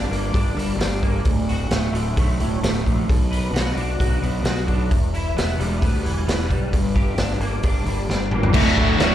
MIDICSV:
0, 0, Header, 1, 6, 480
1, 0, Start_track
1, 0, Key_signature, 2, "major"
1, 0, Tempo, 455581
1, 1323, Time_signature, 4, 2, 24, 8
1, 9639, End_track
2, 0, Start_track
2, 0, Title_t, "Clean electric guitar"
2, 0, Program_c, 0, 27
2, 0, Note_on_c, 0, 43, 68
2, 0, Note_on_c, 0, 62, 68
2, 0, Note_on_c, 0, 67, 56
2, 106, Note_on_c, 0, 58, 52
2, 344, Note_off_c, 0, 62, 0
2, 348, Note_on_c, 0, 62, 59
2, 593, Note_on_c, 0, 55, 55
2, 595, Note_off_c, 0, 43, 0
2, 828, Note_off_c, 0, 62, 0
2, 832, Note_on_c, 0, 62, 51
2, 835, Note_off_c, 0, 67, 0
2, 1067, Note_off_c, 0, 58, 0
2, 1080, Note_on_c, 0, 58, 57
2, 1319, Note_off_c, 0, 55, 0
2, 1319, Note_on_c, 0, 38, 58
2, 1322, Note_off_c, 0, 58, 0
2, 1568, Note_on_c, 0, 66, 55
2, 1803, Note_on_c, 0, 57, 71
2, 2037, Note_on_c, 0, 50, 60
2, 2279, Note_off_c, 0, 57, 0
2, 2291, Note_on_c, 0, 57, 55
2, 2518, Note_on_c, 0, 45, 57
2, 2524, Note_off_c, 0, 38, 0
2, 2759, Note_off_c, 0, 57, 0
2, 2768, Note_off_c, 0, 66, 0
2, 2771, Note_on_c, 0, 57, 54
2, 2993, Note_off_c, 0, 50, 0
2, 3006, Note_on_c, 0, 50, 59
2, 3243, Note_off_c, 0, 45, 0
2, 3244, Note_on_c, 0, 47, 61
2, 3247, Note_off_c, 0, 50, 0
2, 3250, Note_off_c, 0, 57, 0
2, 3486, Note_on_c, 0, 71, 66
2, 3722, Note_off_c, 0, 62, 0
2, 3726, Note_on_c, 0, 66, 69
2, 3968, Note_on_c, 0, 62, 62
2, 4196, Note_off_c, 0, 66, 0
2, 4209, Note_on_c, 0, 66, 54
2, 4447, Note_off_c, 0, 47, 0
2, 4447, Note_on_c, 0, 59, 59
2, 4666, Note_off_c, 0, 66, 0
2, 4678, Note_on_c, 0, 66, 59
2, 4688, Note_off_c, 0, 71, 0
2, 4912, Note_off_c, 0, 62, 0
2, 4925, Note_on_c, 0, 62, 62
2, 5162, Note_on_c, 0, 40, 65
2, 5164, Note_off_c, 0, 66, 0
2, 5167, Note_off_c, 0, 62, 0
2, 5169, Note_off_c, 0, 59, 0
2, 5417, Note_on_c, 0, 64, 61
2, 5652, Note_on_c, 0, 59, 64
2, 5881, Note_on_c, 0, 55, 62
2, 6110, Note_off_c, 0, 59, 0
2, 6123, Note_on_c, 0, 59, 61
2, 6360, Note_on_c, 0, 52, 60
2, 6366, Note_off_c, 0, 40, 0
2, 6587, Note_off_c, 0, 59, 0
2, 6599, Note_on_c, 0, 59, 58
2, 6613, Note_off_c, 0, 64, 0
2, 6816, Note_off_c, 0, 55, 0
2, 6829, Note_on_c, 0, 55, 59
2, 7073, Note_on_c, 0, 43, 61
2, 7079, Note_off_c, 0, 55, 0
2, 7084, Note_off_c, 0, 59, 0
2, 7085, Note_off_c, 0, 52, 0
2, 7323, Note_on_c, 0, 67, 61
2, 7567, Note_on_c, 0, 62, 64
2, 7803, Note_on_c, 0, 58, 62
2, 8040, Note_off_c, 0, 62, 0
2, 8052, Note_on_c, 0, 62, 62
2, 8278, Note_off_c, 0, 43, 0
2, 8295, Note_on_c, 0, 55, 59
2, 8522, Note_off_c, 0, 67, 0
2, 8525, Note_off_c, 0, 62, 0
2, 8538, Note_on_c, 0, 62, 57
2, 8758, Note_off_c, 0, 58, 0
2, 8771, Note_on_c, 0, 58, 61
2, 9006, Note_off_c, 0, 58, 0
2, 9007, Note_off_c, 0, 55, 0
2, 9009, Note_off_c, 0, 62, 0
2, 9639, End_track
3, 0, Start_track
3, 0, Title_t, "Distorted electric guitar"
3, 0, Program_c, 1, 30
3, 8986, Note_on_c, 1, 38, 97
3, 8992, Note_on_c, 1, 45, 101
3, 8999, Note_on_c, 1, 50, 95
3, 9000, Note_on_c, 1, 57, 107
3, 9010, Note_on_c, 1, 66, 112
3, 9233, Note_off_c, 1, 66, 0
3, 9237, Note_on_c, 1, 66, 79
3, 9240, Note_off_c, 1, 57, 0
3, 9253, Note_on_c, 1, 57, 80
3, 9254, Note_off_c, 1, 50, 0
3, 9267, Note_on_c, 1, 50, 65
3, 9462, Note_off_c, 1, 45, 0
3, 9471, Note_off_c, 1, 38, 0
3, 9471, Note_off_c, 1, 50, 0
3, 9475, Note_on_c, 1, 45, 67
3, 9481, Note_off_c, 1, 57, 0
3, 9484, Note_on_c, 1, 50, 78
3, 9494, Note_on_c, 1, 57, 80
3, 9497, Note_off_c, 1, 66, 0
3, 9501, Note_on_c, 1, 66, 81
3, 9639, Note_off_c, 1, 45, 0
3, 9639, Note_off_c, 1, 50, 0
3, 9639, Note_off_c, 1, 57, 0
3, 9639, Note_off_c, 1, 66, 0
3, 9639, End_track
4, 0, Start_track
4, 0, Title_t, "Distorted electric guitar"
4, 0, Program_c, 2, 30
4, 9468, Note_on_c, 2, 38, 102
4, 9639, Note_off_c, 2, 38, 0
4, 9639, End_track
5, 0, Start_track
5, 0, Title_t, "Fingered electric bass"
5, 0, Program_c, 3, 33
5, 112, Note_on_c, 3, 31, 75
5, 348, Note_off_c, 3, 31, 0
5, 360, Note_on_c, 3, 31, 62
5, 581, Note_off_c, 3, 31, 0
5, 588, Note_on_c, 3, 31, 68
5, 819, Note_off_c, 3, 31, 0
5, 825, Note_on_c, 3, 31, 78
5, 1297, Note_off_c, 3, 31, 0
5, 1323, Note_on_c, 3, 26, 75
5, 1787, Note_off_c, 3, 26, 0
5, 1797, Note_on_c, 3, 26, 77
5, 2017, Note_off_c, 3, 26, 0
5, 2024, Note_on_c, 3, 26, 80
5, 2266, Note_off_c, 3, 26, 0
5, 2285, Note_on_c, 3, 35, 73
5, 2517, Note_off_c, 3, 35, 0
5, 2530, Note_on_c, 3, 26, 75
5, 2760, Note_off_c, 3, 26, 0
5, 2764, Note_on_c, 3, 26, 85
5, 2997, Note_off_c, 3, 26, 0
5, 3014, Note_on_c, 3, 34, 85
5, 3242, Note_off_c, 3, 34, 0
5, 3258, Note_on_c, 3, 35, 73
5, 3711, Note_off_c, 3, 35, 0
5, 3717, Note_on_c, 3, 35, 79
5, 3954, Note_off_c, 3, 35, 0
5, 3966, Note_on_c, 3, 35, 88
5, 4199, Note_off_c, 3, 35, 0
5, 4213, Note_on_c, 3, 35, 66
5, 4440, Note_off_c, 3, 35, 0
5, 4446, Note_on_c, 3, 35, 66
5, 4674, Note_off_c, 3, 35, 0
5, 4681, Note_on_c, 3, 35, 82
5, 5147, Note_off_c, 3, 35, 0
5, 5177, Note_on_c, 3, 28, 76
5, 5636, Note_off_c, 3, 28, 0
5, 5645, Note_on_c, 3, 28, 83
5, 5879, Note_off_c, 3, 28, 0
5, 5889, Note_on_c, 3, 28, 77
5, 6120, Note_off_c, 3, 28, 0
5, 6129, Note_on_c, 3, 38, 73
5, 6361, Note_off_c, 3, 38, 0
5, 6376, Note_on_c, 3, 28, 75
5, 6604, Note_off_c, 3, 28, 0
5, 6610, Note_on_c, 3, 28, 83
5, 6838, Note_off_c, 3, 28, 0
5, 6844, Note_on_c, 3, 35, 88
5, 7078, Note_off_c, 3, 35, 0
5, 7085, Note_on_c, 3, 31, 86
5, 7549, Note_off_c, 3, 31, 0
5, 7554, Note_on_c, 3, 31, 76
5, 7792, Note_off_c, 3, 31, 0
5, 7796, Note_on_c, 3, 31, 83
5, 8032, Note_off_c, 3, 31, 0
5, 8038, Note_on_c, 3, 31, 65
5, 8270, Note_off_c, 3, 31, 0
5, 8277, Note_on_c, 3, 31, 70
5, 8511, Note_off_c, 3, 31, 0
5, 8522, Note_on_c, 3, 31, 70
5, 9006, Note_off_c, 3, 31, 0
5, 9006, Note_on_c, 3, 26, 91
5, 9216, Note_off_c, 3, 26, 0
5, 9235, Note_on_c, 3, 26, 83
5, 9449, Note_off_c, 3, 26, 0
5, 9475, Note_on_c, 3, 26, 90
5, 9639, Note_off_c, 3, 26, 0
5, 9639, End_track
6, 0, Start_track
6, 0, Title_t, "Drums"
6, 136, Note_on_c, 9, 46, 44
6, 241, Note_off_c, 9, 46, 0
6, 361, Note_on_c, 9, 36, 92
6, 369, Note_on_c, 9, 46, 60
6, 466, Note_off_c, 9, 36, 0
6, 474, Note_off_c, 9, 46, 0
6, 622, Note_on_c, 9, 46, 41
6, 728, Note_off_c, 9, 46, 0
6, 848, Note_on_c, 9, 46, 59
6, 855, Note_on_c, 9, 38, 98
6, 953, Note_off_c, 9, 46, 0
6, 961, Note_off_c, 9, 38, 0
6, 1084, Note_on_c, 9, 36, 63
6, 1092, Note_on_c, 9, 46, 37
6, 1190, Note_off_c, 9, 36, 0
6, 1197, Note_off_c, 9, 46, 0
6, 1316, Note_on_c, 9, 46, 49
6, 1323, Note_on_c, 9, 36, 83
6, 1421, Note_off_c, 9, 46, 0
6, 1428, Note_off_c, 9, 36, 0
6, 1570, Note_on_c, 9, 46, 39
6, 1675, Note_off_c, 9, 46, 0
6, 1799, Note_on_c, 9, 46, 58
6, 1807, Note_on_c, 9, 38, 83
6, 1904, Note_off_c, 9, 46, 0
6, 1912, Note_off_c, 9, 38, 0
6, 2052, Note_on_c, 9, 46, 45
6, 2157, Note_off_c, 9, 46, 0
6, 2289, Note_on_c, 9, 36, 96
6, 2289, Note_on_c, 9, 46, 64
6, 2394, Note_off_c, 9, 36, 0
6, 2395, Note_off_c, 9, 46, 0
6, 2529, Note_on_c, 9, 46, 43
6, 2635, Note_off_c, 9, 46, 0
6, 2779, Note_on_c, 9, 46, 63
6, 2786, Note_on_c, 9, 38, 101
6, 2884, Note_off_c, 9, 46, 0
6, 2892, Note_off_c, 9, 38, 0
6, 3018, Note_on_c, 9, 36, 64
6, 3025, Note_on_c, 9, 46, 47
6, 3123, Note_off_c, 9, 36, 0
6, 3130, Note_off_c, 9, 46, 0
6, 3261, Note_on_c, 9, 36, 93
6, 3268, Note_on_c, 9, 46, 59
6, 3366, Note_off_c, 9, 36, 0
6, 3374, Note_off_c, 9, 46, 0
6, 3504, Note_on_c, 9, 46, 44
6, 3610, Note_off_c, 9, 46, 0
6, 3748, Note_on_c, 9, 46, 58
6, 3755, Note_on_c, 9, 38, 87
6, 3853, Note_off_c, 9, 46, 0
6, 3861, Note_off_c, 9, 38, 0
6, 3976, Note_on_c, 9, 46, 45
6, 4081, Note_off_c, 9, 46, 0
6, 4215, Note_on_c, 9, 36, 94
6, 4222, Note_on_c, 9, 46, 65
6, 4321, Note_off_c, 9, 36, 0
6, 4327, Note_off_c, 9, 46, 0
6, 4460, Note_on_c, 9, 46, 39
6, 4566, Note_off_c, 9, 46, 0
6, 4688, Note_on_c, 9, 46, 60
6, 4695, Note_on_c, 9, 38, 102
6, 4793, Note_off_c, 9, 46, 0
6, 4801, Note_off_c, 9, 38, 0
6, 4931, Note_on_c, 9, 46, 44
6, 4933, Note_on_c, 9, 36, 64
6, 5036, Note_off_c, 9, 46, 0
6, 5038, Note_off_c, 9, 36, 0
6, 5175, Note_on_c, 9, 36, 88
6, 5176, Note_on_c, 9, 46, 53
6, 5281, Note_off_c, 9, 36, 0
6, 5281, Note_off_c, 9, 46, 0
6, 5420, Note_on_c, 9, 46, 37
6, 5525, Note_off_c, 9, 46, 0
6, 5668, Note_on_c, 9, 46, 62
6, 5676, Note_on_c, 9, 38, 94
6, 5774, Note_off_c, 9, 46, 0
6, 5781, Note_off_c, 9, 38, 0
6, 5906, Note_on_c, 9, 46, 43
6, 6011, Note_off_c, 9, 46, 0
6, 6135, Note_on_c, 9, 36, 99
6, 6140, Note_on_c, 9, 46, 64
6, 6240, Note_off_c, 9, 36, 0
6, 6246, Note_off_c, 9, 46, 0
6, 6384, Note_on_c, 9, 46, 38
6, 6490, Note_off_c, 9, 46, 0
6, 6623, Note_on_c, 9, 46, 61
6, 6630, Note_on_c, 9, 38, 96
6, 6728, Note_off_c, 9, 46, 0
6, 6736, Note_off_c, 9, 38, 0
6, 6855, Note_on_c, 9, 36, 66
6, 6857, Note_on_c, 9, 46, 42
6, 6960, Note_off_c, 9, 36, 0
6, 6963, Note_off_c, 9, 46, 0
6, 7092, Note_on_c, 9, 36, 92
6, 7094, Note_on_c, 9, 46, 57
6, 7198, Note_off_c, 9, 36, 0
6, 7199, Note_off_c, 9, 46, 0
6, 7330, Note_on_c, 9, 36, 70
6, 7336, Note_on_c, 9, 46, 40
6, 7435, Note_off_c, 9, 36, 0
6, 7441, Note_off_c, 9, 46, 0
6, 7561, Note_on_c, 9, 46, 67
6, 7569, Note_on_c, 9, 38, 94
6, 7667, Note_off_c, 9, 46, 0
6, 7674, Note_off_c, 9, 38, 0
6, 7811, Note_on_c, 9, 46, 48
6, 7916, Note_off_c, 9, 46, 0
6, 8040, Note_on_c, 9, 46, 58
6, 8046, Note_on_c, 9, 36, 102
6, 8146, Note_off_c, 9, 46, 0
6, 8152, Note_off_c, 9, 36, 0
6, 8286, Note_on_c, 9, 46, 39
6, 8392, Note_off_c, 9, 46, 0
6, 8533, Note_on_c, 9, 38, 51
6, 8639, Note_off_c, 9, 38, 0
6, 8759, Note_on_c, 9, 45, 70
6, 8865, Note_off_c, 9, 45, 0
6, 8885, Note_on_c, 9, 43, 78
6, 8991, Note_off_c, 9, 43, 0
6, 8998, Note_on_c, 9, 49, 117
6, 8998, Note_on_c, 9, 57, 60
6, 9004, Note_on_c, 9, 36, 117
6, 9103, Note_off_c, 9, 49, 0
6, 9103, Note_off_c, 9, 57, 0
6, 9109, Note_off_c, 9, 36, 0
6, 9245, Note_on_c, 9, 36, 80
6, 9350, Note_off_c, 9, 36, 0
6, 9481, Note_on_c, 9, 57, 60
6, 9488, Note_on_c, 9, 38, 104
6, 9586, Note_off_c, 9, 57, 0
6, 9593, Note_off_c, 9, 38, 0
6, 9639, End_track
0, 0, End_of_file